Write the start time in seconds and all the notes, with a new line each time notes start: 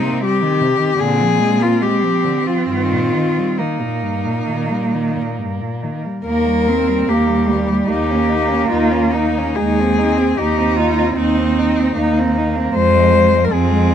Already playing: C4 D#4
0.03 A#3
0.23 G3 G4
0.43 D#3
0.61 C3
0.79 D#3
0.99 A#2 D3 C4 G#4
1.20 F3
1.39 G#3
1.60 A#3 F4
1.81 G#3 G4
2.03 F3
2.24 D3
2.46 F3 F4
2.69 G2 D#3 F4
2.93 A#2
3.15 D#3
3.37 G3
3.58 D#3 A#3 D#4
3.81 A#2
4.03 G2
4.26 A#2
4.47 A#2 D#3
4.70 G3
4.94 D#3
5.16 A#2
5.39 G2
5.61 A#2
5.83 D#3
6.06 G3
6.25 D#2 A#3 A#4
6.47 G3
6.67 A#3 C4
6.88 G3
7.08 D#2 A#3 G4
7.28 G3
7.49 G3 A#3
7.69 G3
7.88 D#2 A#3 D#4 G4
8.10 C#4
8.29 D#4
8.49 C#4
8.69 D#2 D#4 F4
8.92 C#4
9.12 D#4
9.39 C#4
9.56 D#2 G#3 G#4
9.60 D#4
9.80 C4
9.98 C4 D#4
10.18 C4
10.37 D#2 D#4 G4
10.58 C4
10.76 D#4 F4
10.99 C4
11.16 D#2 C4 D#4
11.38 C4
11.59 D#4
11.80 C4
11.96 D#2 A#3 D#4
12.20 C4
12.38 D#4
12.56 C4
12.73 F2 F3 G#3 C5
12.94 G#3
13.12 F3
13.33 G#3
13.45 A#4
13.52 F2 F3 C4 G#4
13.71 G#3
13.91 F3